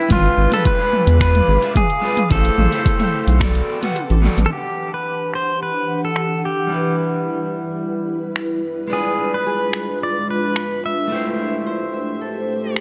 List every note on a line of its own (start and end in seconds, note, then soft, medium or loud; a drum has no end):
0.09 0.30 G#1 loud
0.09 0.48 G#3 medium
0.09 0.48 D4 medium
0.09 0.49 F4 medium
0.09 0.50 F4 loud
0.09 2.28 G#4 medium
0.09 0.50 B4 loud
0.09 2.28 F5 medium
0.09 2.28 D6 medium
0.09 kick medium
0.09 closed hi-hat medium
0.09 mid tom medium
0.09 shaker soft
0.25 shaker soft
0.38 0.48 G#1 medium
0.50 0.75 G#3 medium
0.50 0.76 D4 medium
0.50 0.76 F4 medium
0.50 0.67 A4 medium
0.50 0.77 B4 medium
0.50 closed hi-hat soft
0.50 mid tom medium
0.50 shaker medium
0.65 1.20 B4 loud
0.65 kick loud
0.65 closed hi-hat medium
0.65 shaker medium
0.78 1.16 G#3 medium
0.78 1.17 D4 medium
0.78 1.18 F4 medium
0.78 1.18 B4 medium
0.78 shaker soft
0.93 mid tom medium
1.07 1.42 E2 medium
1.07 closed hi-hat soft
1.07 shaker medium
1.19 1.58 G#3 medium
1.19 1.59 D4 medium
1.19 1.59 F4 medium
1.19 1.72 B4 loud
1.19 1.60 B4 loud
1.19 finger snap medium
1.19 kick medium
1.19 closed hi-hat medium
1.19 shaker medium
1.35 closed hi-hat soft
1.35 mid tom medium
1.35 shaker soft
1.48 1.58 G#1 medium
1.61 1.75 G#3 medium
1.61 1.75 D4 medium
1.61 1.76 F4 medium
1.61 1.77 E5 medium
1.61 closed hi-hat soft
1.61 shaker medium
1.75 2.31 G#4 loud
1.75 kick medium
1.75 closed hi-hat medium
1.75 mid tom medium
1.75 shaker medium
1.90 closed hi-hat soft
1.90 shaker soft
2.01 2.16 G#3 medium
2.01 2.17 D4 medium
2.01 2.18 F4 medium
2.01 2.18 B4 loud
2.17 closed hi-hat soft
2.17 mid tom medium
2.17 shaker medium
2.30 2.50 A1 loud
2.30 2.68 A3 medium
2.30 2.69 E4 medium
2.30 2.70 G4 medium
2.30 4.20 A4 loud
2.30 2.70 C5 loud
2.30 kick loud
2.30 closed hi-hat medium
2.30 shaker soft
2.45 closed hi-hat soft
2.45 shaker soft
2.58 2.68 A1 medium
2.58 mid tom medium
2.71 2.96 A3 medium
2.71 2.96 E4 medium
2.71 2.97 G4 medium
2.71 2.98 C5 medium
2.71 closed hi-hat soft
2.71 shaker medium
2.86 kick loud
2.86 closed hi-hat medium
2.86 shaker medium
2.98 3.37 A3 medium
2.98 3.37 E4 medium
2.98 3.38 G4 medium
2.98 3.39 C5 medium
2.98 closed hi-hat soft
2.98 mid tom medium
2.98 shaker soft
3.27 3.62 B1 medium
3.27 closed hi-hat soft
3.27 shaker medium
3.39 3.78 B3 medium
3.39 3.79 F#4 medium
3.39 3.79 A4 medium
3.39 3.80 D5 loud
3.39 finger snap medium
3.39 kick loud
3.39 closed hi-hat medium
3.39 mid tom medium
3.39 shaker medium
3.55 closed hi-hat soft
3.55 shaker soft
3.81 3.95 B3 medium
3.81 3.96 F#4 medium
3.81 3.97 A4 medium
3.81 3.97 F#5 medium
3.81 closed hi-hat soft
3.81 mid tom medium
3.81 shaker medium
3.96 closed hi-hat medium
3.96 high tom medium
3.96 shaker medium
4.10 4.29 A1 loud
4.10 closed hi-hat soft
4.10 high tom medium
4.10 shaker soft
4.22 4.37 B3 medium
4.22 4.37 F#4 medium
4.22 4.38 A4 medium
4.22 4.39 D5 loud
4.22 mid tom medium
4.37 4.47 A1 medium
4.37 closed hi-hat soft
4.37 mid tom medium
4.37 shaker medium
4.46 6.66 E3 medium
4.46 6.67 D4 medium
4.46 4.52 A4 medium
4.50 6.69 E3 medium
4.50 6.69 D4 medium
4.50 6.69 G4 medium
4.50 6.67 G4 medium
4.50 4.91 G4 medium
4.50 6.69 F#5 medium
4.54 6.70 F#5 medium
4.94 5.31 B4 medium
5.34 5.62 C5 medium
5.34 finger snap medium
5.63 6.01 B4 medium
6.05 6.46 A4 medium
6.16 finger snap medium
6.45 6.96 G4 medium
6.67 8.86 G3 medium
6.67 8.89 G3 medium
6.67 8.87 D4 medium
6.67 11.07 B4 medium
6.71 8.89 E4 medium
6.71 8.88 E4 medium
6.71 8.89 B4 medium
8.36 finger snap medium
8.87 11.06 G#3 medium
8.87 11.09 G#3 medium
8.87 11.07 D4 medium
8.87 11.09 D4 medium
8.87 9.18 D4 medium
8.87 11.09 F4 medium
8.92 11.09 F4 medium
8.92 9.35 G#4 medium
8.92 11.10 B4 medium
9.19 11.99 D4 medium
9.34 9.98 B4 medium
9.46 11.74 G#4 medium
9.73 11.72 B4 medium
9.73 finger snap medium
10.01 11.17 F4 medium
10.01 10.30 D5 medium
10.30 10.85 B4 medium
10.56 finger snap medium
10.86 12.73 E5 medium
11.08 12.81 A3 medium
11.08 12.81 E4 medium
11.08 11.39 E4 medium
11.08 12.81 G4 medium
11.08 12.81 C5 medium
11.12 12.81 G4 medium
11.12 12.81 C5 medium
11.39 12.81 E4 medium
11.66 12.81 C5 medium
11.94 12.81 E5 medium
12.21 12.81 A4 medium
12.76 finger snap medium